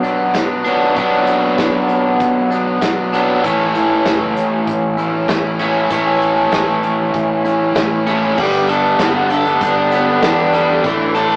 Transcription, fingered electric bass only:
0, 0, Header, 1, 2, 480
1, 0, Start_track
1, 0, Tempo, 616650
1, 755, Time_signature, 4, 2, 24, 8
1, 8844, End_track
2, 0, Start_track
2, 0, Title_t, "Fingered electric bass"
2, 0, Program_c, 0, 33
2, 0, Note_on_c, 0, 35, 100
2, 242, Note_off_c, 0, 35, 0
2, 270, Note_on_c, 0, 35, 94
2, 722, Note_off_c, 0, 35, 0
2, 751, Note_on_c, 0, 35, 91
2, 1203, Note_off_c, 0, 35, 0
2, 1233, Note_on_c, 0, 35, 102
2, 1684, Note_off_c, 0, 35, 0
2, 1714, Note_on_c, 0, 35, 100
2, 2165, Note_off_c, 0, 35, 0
2, 2197, Note_on_c, 0, 35, 97
2, 2647, Note_off_c, 0, 35, 0
2, 2679, Note_on_c, 0, 33, 98
2, 2901, Note_off_c, 0, 33, 0
2, 2925, Note_on_c, 0, 45, 78
2, 3145, Note_off_c, 0, 45, 0
2, 3159, Note_on_c, 0, 30, 100
2, 3382, Note_off_c, 0, 30, 0
2, 3638, Note_on_c, 0, 33, 95
2, 4089, Note_off_c, 0, 33, 0
2, 4119, Note_on_c, 0, 33, 93
2, 4570, Note_off_c, 0, 33, 0
2, 4596, Note_on_c, 0, 33, 84
2, 5049, Note_off_c, 0, 33, 0
2, 5079, Note_on_c, 0, 33, 106
2, 5530, Note_off_c, 0, 33, 0
2, 5559, Note_on_c, 0, 33, 103
2, 6010, Note_off_c, 0, 33, 0
2, 6040, Note_on_c, 0, 33, 102
2, 6490, Note_off_c, 0, 33, 0
2, 6524, Note_on_c, 0, 31, 87
2, 6971, Note_off_c, 0, 31, 0
2, 7000, Note_on_c, 0, 31, 93
2, 7449, Note_off_c, 0, 31, 0
2, 7482, Note_on_c, 0, 31, 107
2, 7929, Note_off_c, 0, 31, 0
2, 7960, Note_on_c, 0, 40, 98
2, 8407, Note_off_c, 0, 40, 0
2, 8438, Note_on_c, 0, 33, 100
2, 8844, Note_off_c, 0, 33, 0
2, 8844, End_track
0, 0, End_of_file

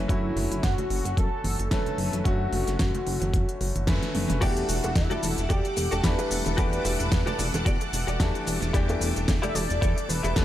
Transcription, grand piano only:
0, 0, Header, 1, 2, 480
1, 0, Start_track
1, 0, Tempo, 540541
1, 83, Time_signature, 4, 2, 24, 8
1, 9278, End_track
2, 0, Start_track
2, 0, Title_t, "Grand piano"
2, 0, Program_c, 0, 0
2, 73, Note_on_c, 0, 50, 93
2, 78, Note_on_c, 0, 54, 86
2, 81, Note_on_c, 0, 57, 83
2, 85, Note_on_c, 0, 61, 83
2, 91, Note_on_c, 0, 66, 101
2, 1492, Note_off_c, 0, 50, 0
2, 1495, Note_off_c, 0, 54, 0
2, 1497, Note_off_c, 0, 57, 0
2, 1498, Note_off_c, 0, 61, 0
2, 1502, Note_off_c, 0, 66, 0
2, 1517, Note_on_c, 0, 50, 93
2, 1519, Note_on_c, 0, 54, 85
2, 1521, Note_on_c, 0, 57, 87
2, 1522, Note_on_c, 0, 61, 86
2, 1524, Note_on_c, 0, 71, 101
2, 1975, Note_off_c, 0, 50, 0
2, 1976, Note_off_c, 0, 54, 0
2, 1976, Note_off_c, 0, 57, 0
2, 1977, Note_off_c, 0, 61, 0
2, 1978, Note_off_c, 0, 71, 0
2, 1990, Note_on_c, 0, 50, 90
2, 1995, Note_on_c, 0, 54, 84
2, 2000, Note_on_c, 0, 57, 85
2, 2003, Note_on_c, 0, 61, 85
2, 2009, Note_on_c, 0, 66, 106
2, 3411, Note_off_c, 0, 50, 0
2, 3414, Note_off_c, 0, 54, 0
2, 3416, Note_off_c, 0, 57, 0
2, 3418, Note_off_c, 0, 61, 0
2, 3420, Note_off_c, 0, 66, 0
2, 3439, Note_on_c, 0, 50, 93
2, 3440, Note_on_c, 0, 54, 85
2, 3443, Note_on_c, 0, 57, 85
2, 3444, Note_on_c, 0, 61, 87
2, 3447, Note_on_c, 0, 71, 105
2, 3895, Note_off_c, 0, 50, 0
2, 3896, Note_off_c, 0, 54, 0
2, 3898, Note_off_c, 0, 57, 0
2, 3898, Note_off_c, 0, 61, 0
2, 3899, Note_off_c, 0, 71, 0
2, 3913, Note_on_c, 0, 52, 94
2, 3917, Note_on_c, 0, 55, 86
2, 3922, Note_on_c, 0, 57, 87
2, 3926, Note_on_c, 0, 62, 88
2, 3931, Note_on_c, 0, 78, 107
2, 5332, Note_off_c, 0, 52, 0
2, 5334, Note_off_c, 0, 55, 0
2, 5337, Note_off_c, 0, 57, 0
2, 5339, Note_off_c, 0, 62, 0
2, 5342, Note_off_c, 0, 78, 0
2, 5357, Note_on_c, 0, 52, 96
2, 5359, Note_on_c, 0, 55, 90
2, 5362, Note_on_c, 0, 57, 90
2, 5364, Note_on_c, 0, 62, 90
2, 5366, Note_on_c, 0, 69, 106
2, 5815, Note_off_c, 0, 52, 0
2, 5816, Note_off_c, 0, 55, 0
2, 5817, Note_off_c, 0, 57, 0
2, 5818, Note_off_c, 0, 62, 0
2, 5819, Note_off_c, 0, 69, 0
2, 5833, Note_on_c, 0, 52, 97
2, 5836, Note_on_c, 0, 55, 87
2, 5841, Note_on_c, 0, 57, 90
2, 5846, Note_on_c, 0, 62, 85
2, 5850, Note_on_c, 0, 78, 107
2, 7252, Note_off_c, 0, 52, 0
2, 7254, Note_off_c, 0, 55, 0
2, 7257, Note_off_c, 0, 57, 0
2, 7259, Note_off_c, 0, 62, 0
2, 7261, Note_off_c, 0, 78, 0
2, 7276, Note_on_c, 0, 52, 98
2, 7278, Note_on_c, 0, 55, 92
2, 7279, Note_on_c, 0, 57, 89
2, 7284, Note_on_c, 0, 62, 89
2, 7285, Note_on_c, 0, 69, 107
2, 7734, Note_off_c, 0, 52, 0
2, 7735, Note_off_c, 0, 55, 0
2, 7736, Note_off_c, 0, 57, 0
2, 7738, Note_off_c, 0, 62, 0
2, 7738, Note_off_c, 0, 69, 0
2, 7753, Note_on_c, 0, 52, 97
2, 7756, Note_on_c, 0, 55, 88
2, 7762, Note_on_c, 0, 57, 89
2, 7767, Note_on_c, 0, 62, 90
2, 7770, Note_on_c, 0, 67, 107
2, 9173, Note_off_c, 0, 52, 0
2, 9174, Note_off_c, 0, 55, 0
2, 9177, Note_off_c, 0, 57, 0
2, 9180, Note_off_c, 0, 62, 0
2, 9181, Note_off_c, 0, 67, 0
2, 9197, Note_on_c, 0, 52, 97
2, 9200, Note_on_c, 0, 55, 89
2, 9202, Note_on_c, 0, 57, 90
2, 9204, Note_on_c, 0, 62, 88
2, 9205, Note_on_c, 0, 71, 111
2, 9278, Note_off_c, 0, 52, 0
2, 9278, Note_off_c, 0, 55, 0
2, 9278, Note_off_c, 0, 57, 0
2, 9278, Note_off_c, 0, 62, 0
2, 9278, Note_off_c, 0, 71, 0
2, 9278, End_track
0, 0, End_of_file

